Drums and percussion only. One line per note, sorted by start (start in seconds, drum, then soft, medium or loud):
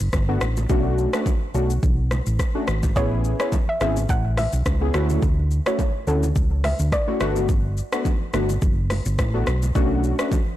0.00 shaker medium
0.13 kick medium
0.13 cross-stick loud
0.13 high bongo medium
0.13 shaker medium
0.41 cross-stick loud
0.41 shaker medium
0.57 low bongo medium
0.57 shaker medium
0.70 kick loud
0.70 low conga medium
0.70 shaker medium
0.98 shaker soft
1.13 cross-stick loud
1.13 shaker medium
1.26 kick loud
1.26 high bongo medium
1.26 low conga medium
1.26 shaker medium
1.55 shaker medium
1.70 shaker medium
1.83 kick loud
1.83 low conga medium
1.83 shaker medium
2.11 cross-stick medium
2.11 high bongo medium
2.11 low bongo medium
2.11 shaker medium
2.26 shaker medium
2.39 kick medium
2.39 cross-stick medium
2.39 high bongo medium
2.39 shaker medium
2.68 cross-stick loud
2.68 shaker soft
2.83 kick medium
2.83 low bongo medium
2.83 shaker medium
2.96 kick loud
2.96 low conga medium
2.96 shaker medium
3.24 shaker soft
3.40 cross-stick loud
3.40 shaker medium
3.52 kick loud
3.52 high bongo medium
3.52 low conga medium
3.52 shaker medium
3.81 cross-stick loud
3.81 shaker medium
3.97 low bongo medium
3.97 shaker medium
4.09 kick loud
4.09 low conga medium
4.09 shaker medium
4.37 cross-stick medium
4.37 open hi-hat soft
4.37 high bongo medium
4.37 low bongo medium
4.37 shaker soft
4.53 shaker medium
4.66 kick medium
4.66 cross-stick loud
4.66 high bongo medium
4.66 shaker medium
4.94 cross-stick loud
4.94 shaker soft
5.10 low bongo medium
5.10 shaker medium
5.22 kick loud
5.22 low conga medium
5.22 shaker medium
5.51 shaker soft
5.66 cross-stick loud
5.66 shaker medium
5.79 kick medium
5.79 high bongo medium
5.79 low conga medium
5.79 shaker medium
6.07 shaker medium
6.23 low bongo medium
6.23 shaker medium
6.36 kick loud
6.36 low conga medium
6.36 shaker medium
6.64 cross-stick medium
6.64 open hi-hat medium
6.64 high bongo medium
6.64 low bongo medium
6.64 shaker medium
6.79 shaker medium
6.92 kick medium
6.92 cross-stick medium
6.92 high bongo medium
6.92 shaker medium
7.20 cross-stick loud
7.20 shaker medium
7.36 low bongo medium
7.36 shaker medium
7.49 kick loud
7.49 low conga medium
7.49 shaker medium
7.77 shaker soft
7.93 cross-stick loud
7.93 shaker medium
8.05 kick medium
8.05 high bongo medium
8.05 low conga medium
8.05 shaker medium
8.34 cross-stick loud
8.34 shaker medium
8.49 low bongo medium
8.49 shaker medium
8.62 kick loud
8.62 low conga medium
8.62 shaker medium
8.90 cross-stick medium
8.90 open hi-hat medium
8.90 high bongo medium
8.90 low bongo medium
8.90 shaker medium
9.06 shaker medium
9.19 kick medium
9.19 cross-stick loud
9.19 high bongo medium
9.19 shaker medium
9.47 cross-stick loud
9.47 shaker medium
9.62 low bongo medium
9.62 shaker medium
9.75 kick loud
9.75 low conga medium
9.75 shaker medium
10.04 shaker soft
10.19 cross-stick loud
10.19 shaker medium
10.32 kick loud
10.32 high bongo medium
10.32 low conga medium
10.32 shaker medium